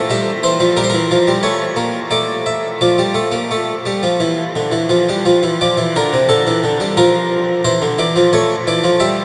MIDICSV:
0, 0, Header, 1, 2, 480
1, 0, Start_track
1, 0, Key_signature, -1, "minor"
1, 0, Tempo, 678733
1, 50, Time_signature, 4, 2, 24, 8
1, 1489, Tempo, 696864
1, 3889, Tempo, 681044
1, 6467, End_track
2, 0, Start_track
2, 0, Title_t, "Harpsichord"
2, 0, Program_c, 0, 6
2, 69, Note_on_c, 0, 55, 87
2, 74, Note_on_c, 0, 76, 90
2, 211, Note_off_c, 0, 55, 0
2, 215, Note_off_c, 0, 76, 0
2, 307, Note_on_c, 0, 72, 94
2, 310, Note_on_c, 0, 52, 83
2, 415, Note_off_c, 0, 52, 0
2, 423, Note_on_c, 0, 53, 77
2, 449, Note_off_c, 0, 72, 0
2, 531, Note_off_c, 0, 53, 0
2, 542, Note_on_c, 0, 70, 79
2, 544, Note_on_c, 0, 55, 75
2, 583, Note_off_c, 0, 70, 0
2, 592, Note_on_c, 0, 72, 74
2, 633, Note_off_c, 0, 72, 0
2, 634, Note_on_c, 0, 70, 83
2, 652, Note_off_c, 0, 55, 0
2, 666, Note_on_c, 0, 52, 78
2, 772, Note_off_c, 0, 52, 0
2, 786, Note_on_c, 0, 53, 81
2, 893, Note_off_c, 0, 53, 0
2, 900, Note_on_c, 0, 55, 79
2, 999, Note_off_c, 0, 70, 0
2, 1010, Note_off_c, 0, 55, 0
2, 1011, Note_on_c, 0, 73, 88
2, 1015, Note_on_c, 0, 57, 71
2, 1161, Note_off_c, 0, 57, 0
2, 1247, Note_on_c, 0, 58, 78
2, 1397, Note_off_c, 0, 58, 0
2, 1477, Note_off_c, 0, 73, 0
2, 1490, Note_on_c, 0, 74, 83
2, 1492, Note_on_c, 0, 57, 71
2, 1637, Note_off_c, 0, 74, 0
2, 1734, Note_on_c, 0, 76, 76
2, 1881, Note_off_c, 0, 76, 0
2, 1954, Note_off_c, 0, 57, 0
2, 1976, Note_on_c, 0, 53, 65
2, 1976, Note_on_c, 0, 74, 63
2, 2089, Note_off_c, 0, 53, 0
2, 2094, Note_on_c, 0, 55, 71
2, 2205, Note_on_c, 0, 57, 73
2, 2208, Note_off_c, 0, 55, 0
2, 2323, Note_on_c, 0, 58, 65
2, 2324, Note_off_c, 0, 57, 0
2, 2443, Note_off_c, 0, 58, 0
2, 2456, Note_on_c, 0, 57, 73
2, 2603, Note_off_c, 0, 57, 0
2, 2695, Note_on_c, 0, 55, 67
2, 2809, Note_off_c, 0, 55, 0
2, 2814, Note_on_c, 0, 53, 65
2, 2928, Note_off_c, 0, 53, 0
2, 2932, Note_on_c, 0, 52, 80
2, 3080, Note_off_c, 0, 52, 0
2, 3177, Note_on_c, 0, 50, 68
2, 3287, Note_on_c, 0, 52, 57
2, 3289, Note_off_c, 0, 50, 0
2, 3405, Note_off_c, 0, 52, 0
2, 3410, Note_on_c, 0, 53, 70
2, 3527, Note_off_c, 0, 53, 0
2, 3543, Note_on_c, 0, 55, 81
2, 3627, Note_off_c, 0, 74, 0
2, 3654, Note_off_c, 0, 55, 0
2, 3658, Note_on_c, 0, 53, 72
2, 3771, Note_off_c, 0, 53, 0
2, 3779, Note_on_c, 0, 52, 67
2, 3891, Note_off_c, 0, 52, 0
2, 3904, Note_on_c, 0, 74, 89
2, 3905, Note_on_c, 0, 53, 64
2, 4015, Note_off_c, 0, 53, 0
2, 4019, Note_on_c, 0, 52, 80
2, 4050, Note_off_c, 0, 74, 0
2, 4132, Note_off_c, 0, 52, 0
2, 4148, Note_on_c, 0, 50, 75
2, 4152, Note_on_c, 0, 70, 96
2, 4257, Note_off_c, 0, 50, 0
2, 4269, Note_on_c, 0, 48, 74
2, 4295, Note_off_c, 0, 70, 0
2, 4378, Note_off_c, 0, 48, 0
2, 4381, Note_on_c, 0, 69, 90
2, 4383, Note_on_c, 0, 50, 72
2, 4495, Note_off_c, 0, 50, 0
2, 4508, Note_on_c, 0, 52, 78
2, 4617, Note_off_c, 0, 52, 0
2, 4627, Note_on_c, 0, 50, 68
2, 4737, Note_off_c, 0, 50, 0
2, 4743, Note_on_c, 0, 55, 75
2, 4843, Note_off_c, 0, 69, 0
2, 4855, Note_off_c, 0, 55, 0
2, 4863, Note_on_c, 0, 53, 80
2, 4863, Note_on_c, 0, 70, 99
2, 5322, Note_off_c, 0, 53, 0
2, 5322, Note_off_c, 0, 70, 0
2, 5338, Note_on_c, 0, 52, 76
2, 5338, Note_on_c, 0, 72, 93
2, 5451, Note_off_c, 0, 52, 0
2, 5460, Note_on_c, 0, 50, 77
2, 5484, Note_off_c, 0, 72, 0
2, 5572, Note_off_c, 0, 50, 0
2, 5577, Note_on_c, 0, 52, 73
2, 5580, Note_on_c, 0, 74, 84
2, 5691, Note_off_c, 0, 52, 0
2, 5700, Note_on_c, 0, 53, 75
2, 5726, Note_off_c, 0, 74, 0
2, 5812, Note_off_c, 0, 53, 0
2, 5820, Note_on_c, 0, 73, 96
2, 5821, Note_on_c, 0, 57, 87
2, 5965, Note_off_c, 0, 73, 0
2, 5966, Note_off_c, 0, 57, 0
2, 6062, Note_on_c, 0, 52, 89
2, 6065, Note_on_c, 0, 74, 95
2, 6172, Note_off_c, 0, 52, 0
2, 6178, Note_on_c, 0, 53, 77
2, 6209, Note_off_c, 0, 74, 0
2, 6290, Note_off_c, 0, 53, 0
2, 6291, Note_on_c, 0, 55, 84
2, 6292, Note_on_c, 0, 76, 102
2, 6439, Note_off_c, 0, 55, 0
2, 6440, Note_off_c, 0, 76, 0
2, 6467, End_track
0, 0, End_of_file